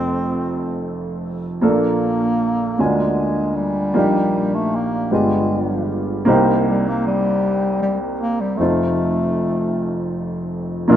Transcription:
0.00 1.59 F1 soft
0.00 1.59 F2 soft
0.00 1.58 A3 soft
0.00 0.86 C4 medium
0.00 1.58 C4 medium
0.00 1.59 F4 soft
0.00 1.59 A4 medium
1.61 2.75 A#1 soft
1.61 2.75 A#2 medium
1.61 2.77 A#3 medium
1.61 2.82 A#3 medium
1.61 2.78 D4 soft
1.61 2.78 F4 soft
1.61 2.79 A4 medium
2.78 3.91 D2 medium
2.78 3.91 D3 soft
2.78 3.58 G#3 medium
2.78 3.92 A#3 soft
2.78 2.86 C#4 soft
2.78 3.96 F4 soft
2.78 3.96 G#5 medium
2.85 3.93 D4 soft
3.56 4.57 G3 medium
3.94 5.07 A#1 medium
3.94 5.07 A#2 medium
3.94 5.11 A#3 medium
3.94 5.11 D4 medium
3.94 5.11 D#4 soft
3.94 5.11 G4 medium
4.55 4.77 A3 medium
4.75 5.13 A#3 medium
5.11 6.24 G1 soft
5.11 6.23 G2 soft
5.11 6.27 G#3 soft
5.11 5.95 G#3 medium
5.11 6.27 B3 soft
5.11 6.28 F4 soft
5.11 6.27 G4 soft
6.25 8.55 C2 medium
6.25 8.55 C3 medium
6.25 8.54 A#3 medium
6.25 8.55 C4 medium
6.25 8.55 D#4 medium
6.25 8.56 G4 medium
6.69 6.85 G3 medium
6.88 7.05 A#3 medium
7.07 7.79 G3 medium
7.83 7.99 G3 medium
8.21 8.42 A#3 medium
8.40 8.59 G3 medium
8.57 10.87 F1 medium
8.57 10.87 F2 soft
8.57 10.86 A3 soft
8.57 10.13 A3 medium
8.57 10.86 C4 soft
8.57 10.87 D#4 soft
8.62 10.88 F4 medium
10.88 10.96 A#1 medium
10.88 10.96 A#2 medium
10.88 10.96 A#3 medium
10.88 10.96 D4 medium
10.88 10.96 F4 medium
10.92 10.96 A#3 medium
10.92 10.96 A#4 medium

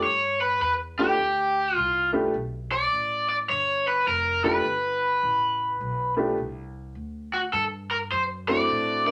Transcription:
0.03 0.59 G2 medium
0.03 0.38 C#5 medium
0.41 0.61 B4 medium
0.61 1.17 E2 medium
0.61 0.72 B4 medium
0.98 1.17 A3 medium
0.98 1.17 B3 medium
0.98 1.17 D4 medium
0.98 1.17 F4 medium
0.98 1.75 G4 medium
0.98 1.17 G4 medium
1.18 1.74 D2 medium
1.75 2.32 C2 medium
1.75 2.10 F4 medium
2.13 2.31 A3 medium
2.13 2.32 B3 medium
2.13 2.32 D4 medium
2.13 2.32 F4 medium
2.13 2.32 G4 medium
2.34 2.90 B1 medium
2.72 3.28 D5 medium
2.92 3.48 A1 medium
3.29 3.34 D5 loud
3.49 4.06 G1 medium
3.49 3.87 C#5 medium
3.88 4.07 B4 medium
4.07 4.63 F1 medium
4.07 4.44 A#4 medium
4.44 4.62 A3 medium
4.44 4.62 B3 medium
4.44 4.62 D4 medium
4.44 4.62 F4 medium
4.44 4.63 G4 medium
4.44 6.14 B4 medium
4.65 5.21 G1 medium
5.23 5.79 A1 medium
5.81 6.36 B1 medium
6.17 6.35 A3 medium
6.17 6.35 B3 medium
6.17 6.35 D4 medium
6.17 6.36 F4 medium
6.17 6.36 G4 medium
6.38 6.94 C2 medium
6.95 7.51 D2 medium
7.34 7.39 F#4 medium
7.53 8.09 G2 medium
7.53 7.63 A4 medium
7.91 7.96 A#4 medium
8.11 8.67 F#2 medium
8.11 8.22 C5 loud
8.48 9.02 A3 medium
8.48 9.02 C4 medium
8.48 9.02 D4 medium
8.48 9.02 E4 medium
8.48 9.02 F#4 medium
8.48 9.06 D5 loud
8.69 9.11 A2 medium
9.06 9.11 A#3 medium
9.06 9.11 C4 medium
9.06 9.11 D4 medium
9.06 9.11 E4 medium
9.06 9.11 A#4 medium
9.06 9.11 D5 medium

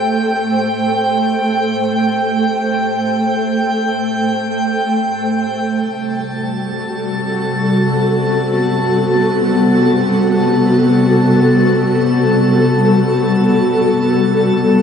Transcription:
0.00 5.59 A3 medium
0.00 5.57 A4 medium
0.00 5.59 C5 medium
0.00 5.59 G5 medium
0.00 5.61 G5 medium
0.00 5.61 G6 medium
5.58 14.82 C3 medium
5.58 14.82 G3 medium
5.58 14.82 A5 medium
5.58 14.82 A6 medium
5.81 14.82 F#4 medium
5.85 14.82 A4 medium
7.53 14.82 B3 medium

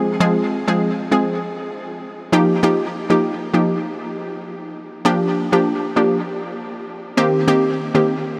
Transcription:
0.00 0.18 F3 medium
0.00 0.18 G#3 medium
0.00 0.18 C4 medium
0.00 0.19 G#4 medium
0.20 0.63 F3 medium
0.20 0.63 G#3 medium
0.20 0.64 C4 medium
0.20 0.64 G#4 loud
0.68 0.89 F3 medium
0.68 0.89 G#3 medium
0.68 0.90 C4 medium
0.68 0.90 G#4 medium
1.11 1.35 F3 medium
1.11 1.35 G#3 medium
1.11 1.35 C4 medium
1.11 1.35 G#4 medium
2.32 2.61 F3 loud
2.32 2.61 A#3 medium
2.32 2.61 D#4 medium
2.32 2.61 G4 loud
2.63 3.06 F3 loud
2.63 3.06 A#3 medium
2.63 3.06 D#4 medium
2.63 3.06 G4 loud
3.10 3.32 F3 medium
3.10 3.32 A#3 medium
3.10 3.32 D#4 medium
3.10 3.32 G4 medium
3.54 3.77 F3 medium
3.54 3.77 A#3 medium
3.54 3.77 D#4 medium
3.54 3.78 G4 medium
5.05 5.48 F3 loud
5.05 5.48 A#3 medium
5.05 5.48 D4 medium
5.05 5.49 G4 loud
5.52 5.74 F3 medium
5.52 5.74 A#3 medium
5.52 5.74 D4 medium
5.52 5.75 G4 medium
5.96 6.20 F3 medium
5.96 6.20 A#3 medium
5.96 6.20 D4 medium
5.96 6.20 G4 medium
7.17 7.45 D#3 loud
7.17 7.46 A#3 medium
7.17 7.46 C4 medium
7.17 7.46 G4 loud
7.47 7.91 D#3 medium
7.47 7.91 A#3 medium
7.47 7.91 C4 medium
7.47 7.91 G4 loud
7.95 8.17 D#3 medium
7.95 8.17 A#3 medium
7.95 8.17 C4 medium
7.95 8.17 G4 medium

